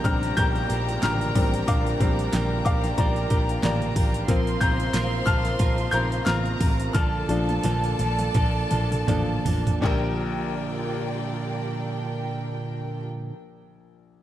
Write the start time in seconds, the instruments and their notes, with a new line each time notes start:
Already playing: string section F4 A#4 D5 G5, violin section A#4 A#5, upright piano A#5 G6
0.04 picked electric bass A#1, clean electric guitar F3 D4 G4, upright piano G3 C4 D4 A#5 F6, kick, open hi-hat
0.23 snare, open hi-hat
0.37 picked electric bass A#1, clean electric guitar F3 A#3 D4 G4, upright piano A#5 G6, kick, open hi-hat
0.55 open hi-hat
0.69 picked electric bass A#1, clean electric guitar F3 A#3 D4 G4, open hi-hat
0.89 open hi-hat
1.02 picked electric bass A1, clean electric guitar A#2 D3 F3 A#3 D4 G4, upright piano A#5 F6, snare, open hi-hat
1.21 open hi-hat
1.35 picked electric bass A1, clean electric guitar F3 A#3 D4 G4, upright piano G3 C4 D4, kick, open hi-hat
1.54 open hi-hat
1.68 picked electric bass A#1, clean electric guitar A#2 D3 F3 A#3 D4 G4, upright piano F5 D6, kick, open hi-hat
1.87 open hi-hat
2.00 picked electric bass A#1, clean electric guitar F3 A#3 D4 G4, upright piano G3 C4 D4, kick, open hi-hat
2.19 open hi-hat
2.33 picked electric bass A#1, clean electric guitar A#2 D3 F3 A#3 D4 G4, snare, open hi-hat
2.65 picked electric bass A#1, clean electric guitar A#3 D4 G4, upright piano F5 D6, kick, open hi-hat
2.84 snare, open hi-hat
2.98 picked electric bass A#1, clean electric guitar F3 A#3 D4 G4, upright piano D5 A#5, kick, open hi-hat
3.16 open hi-hat
3.30 picked electric bass A#1, clean electric guitar F3 A#3 D4 G4, kick, open hi-hat
3.49 open hi-hat
3.63 picked electric bass A1, clean electric guitar A#2 D3 F3 A#3 D4 G4, upright piano D5 A#5, snare, open hi-hat
3.82 open hi-hat
3.96 picked electric bass A1, clean electric guitar F3 A#3 D4 G4, kick, open hi-hat
4.14 open hi-hat
4.28 picked electric bass A#1, upright piano F3 A#3 C4, clean electric guitar A#3 C4 F4 A#4, string section C5 F5, violin section C5 C6, kick, open hi-hat
4.47 open hi-hat
4.61 picked electric bass A#1, clean electric guitar C4 F4 A#4, upright piano A#5 G6, kick, open hi-hat
4.80 open hi-hat
4.93 picked electric bass A#1, clean electric guitar A#3 C4 F4 A#4, snare, open hi-hat
5.26 picked electric bass A#1, clean electric guitar C4 F4 A#4, upright piano A5 F6, kick, open hi-hat
5.45 snare, open hi-hat
5.59 picked electric bass A#1, clean electric guitar A#3 C4 F4 A#4, kick, open hi-hat
5.78 open hi-hat
5.91 picked electric bass A#1, clean electric guitar F4 A#4, upright piano A#5 G6, open hi-hat
5.96 clean electric guitar C4
6.12 open hi-hat
6.25 picked electric bass A1, clean electric guitar A#3 C4 F4 A#4, violin section A#4 A#5, upright piano A#5 F6, snare, open hi-hat
6.46 open hi-hat
6.60 picked electric bass A1, clean electric guitar C4 F4 A#4, kick, open hi-hat
6.80 open hi-hat
6.93 picked electric bass A#1, clean electric guitar A#2 D3 F3 A#3 D4 A4, violin section A4 A5, string section A4 D5 A5, upright piano A5 F6, kick, open hi-hat, high tom
7.29 picked electric bass A#1, upright piano F3 D4 A4, clean electric guitar F3 A#3 D4 A4, open hi-hat, high tom
7.49 open hi-hat, high tom
7.63 picked electric bass A#1, clean electric guitar A#2 D3 F3 A#3 D4 A4, open hi-hat, mid tom
7.84 open hi-hat
7.99 picked electric bass A#1, clean electric guitar F3 A#3 D4 A4, open hi-hat, mid tom
8.19 open hi-hat, mid tom
8.34 picked electric bass A#1, clean electric guitar F3 A#3 D4 A4, kick, mid tom, open hi-hat
8.70 picked electric bass A#1, clean electric guitar F3 A#3 D4 A4, mid tom, open hi-hat
8.92 mid tom, open hi-hat
9.07 picked electric bass A1, clean electric guitar A#2 D3 F3 A#3 D4 A4, upright piano F3 D4, floor tom, open hi-hat
9.45 picked electric bass A1, clean electric guitar F3 A#3 D4 A4, floor tom, open hi-hat
9.67 floor tom, open hi-hat
9.81 picked electric bass A#1, upright piano A#1 D4 G4, clean electric guitar A#2 D3, violin section D4 A#4 G5, string section F4 G4 A#4 D5 G5, kick, clap
9.85 clean electric guitar F3 A#3 D4, upright piano A#4
9.90 clean electric guitar G4